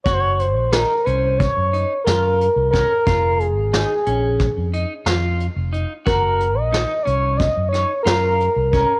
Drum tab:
HH |xxxxxxxxx|xxxxxxxxx|xxxxxxxxx|
SD |--o---o-o|--o-o-o--|--o--oo--|
BD |o---o---o|o---o----|o---o---o|